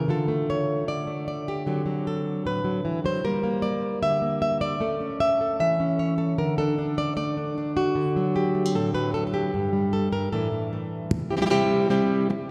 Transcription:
0.08 D3 A3 F4 A4
0.28 A3
0.50 C#5
0.88 D3 D5
1.07 A3
1.28 D5
1.48 G4
1.66 D3 F#3 C4
1.86 F#3
2.07 A4
2.45 A2 B4
2.64 F#3
2.85 E3
3.04 F#3 C5
3.24 G3 A#3 A#4
3.43 A#3
3.62 D5
4.02 D3 E5
4.22 A#3
4.42 E5
4.61 D5
4.80 A3 C#4 A4
5.01 C#4
5.20 E5
5.41 A4
5.60 E3 E5
5.80 C#4
5.99 C#5
6.18 A4
6.38 D3 A#4
6.58 D4 A4
6.78 D4
6.98 D5
7.17 A3 D5
7.37 D4
7.58 D4
7.77 F#4
7.95 D3
8.16 F#3
8.36 G4
8.55 A3
8.66 C4
8.75 A2 A4
8.94 F#3 B4
9.14 A4
9.27 A4
9.34 G4
9.54 G2
9.73 G3
9.93 A4
10.12 G2 A#4
10.32 A2 E3 A3 D4 A4
10.52 E3
10.73 A3
11.11 muted nylon-string guitar stroke
11.31 C4 E4 G4
11.37 G3 C4 E4 G4
11.41 G3 C4 E4 G4
11.46 G3 C4 E4 G4
11.50 C3 G3 C4 E4 G4
11.89 C3 G3 C4 E4 G4
12.30 muted nylon-string guitar stroke

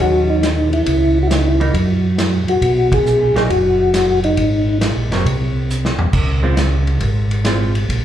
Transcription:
Already playing: F#3 C#4 D#4
0.00 D#2 F#4
0.30 D#4
0.43 snare, hi-hat pedal, ride
0.73 E4, ride
0.86 C#2, kick, ride
1.23 F#4
1.27 E4, snare, hi-hat pedal, ride
1.36 D#4
1.48 E4
1.60 E3 A#3 D#4, ride
1.73 F#2, kick, ride
2.18 snare, hi-hat pedal, ride
2.47 F#2 F#4, ride
2.61 B1, kick, ride
2.92 G#4, kick, ride
3.06 hi-hat pedal
3.35 A#1 F#3 A#3 D#4 G#4, snare, ride
3.50 F#1 F#4, kick, ride
3.94 snare, hi-hat pedal, ride
4.24 D#4, ride
4.37 G#1, kick, ride
4.81 snare, hi-hat pedal, ride
4.96 A#1
5.10 F#1 F#3 A#3 C4, snare, ride
5.25 C2, kick, ride
5.70 hi-hat pedal
5.85 snare
5.99 C2, floor tom
6.13 C#2, kick, crash
6.43 G#3 C4 F4
6.57 snare, hi-hat pedal, ride
6.87 ride
7.00 G#1, kick, ride
7.31 ride
7.45 G#3 C4 F4, snare, hi-hat pedal, ride
7.75 ride
7.89 A#1, kick, ride

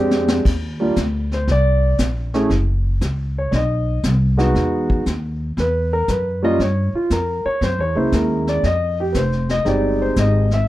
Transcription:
Already playing: F2 G#3 C4 D4 G4
0.11 snare
0.28 snare
0.45 D#2, brush sweep, kick, snare, crash
0.80 G3 A#3 D4 F4
0.96 D2, kick, snare, hi-hat pedal
1.31 C5, snare
1.48 C2 D5, brush sweep, kick, snare
1.98 A#1, kick, snare, hi-hat pedal
2.34 A3 C#4 E4 G#4, snare
2.50 F#1, brush sweep, kick, snare
3.01 C#2, kick, snare, hi-hat pedal
3.38 C#5
3.51 B1 D5 D#5, brush sweep, kick, snare
4.03 C2, kick, snare, hi-hat pedal
4.37 G#3 B3 D#4 F#4, snare
4.55 E2, brush sweep, kick, snare
4.90 kick
5.06 D#2, kick, snare, hi-hat pedal
5.57 E2 B4, brush sweep, kick, snare
5.93 A#4
6.08 F#2 B4, kick, snare, hi-hat pedal
6.42 G3 A#3 C#4 F4 D#5
6.59 G2 C#5, brush sweep, kick, snare
6.93 F4, muted upright bass stroke
7.10 F2 A#4, kick, snare, hi-hat pedal
7.45 C#5, muted upright bass stroke
7.61 F#2 C5, brush sweep, kick, snare
7.78 E2 C#5
7.95 C#2 G#3 A#3 C#4 E4 C5
8.12 D#2 A#4, kick, snare, hi-hat pedal
8.47 D5, snare
8.63 F2 D#5, brush sweep, kick, snare
9.00 G4
9.13 F1 B4 C5, kick, snare, hi-hat pedal
9.32 snare
9.49 D#5, snare
9.65 G1 G#3 C4 D#4 G4 D5, brush sweep, kick, snare
10.02 C5
10.16 G#1 D#5, kick, snare, hi-hat pedal
10.51 E5, snare

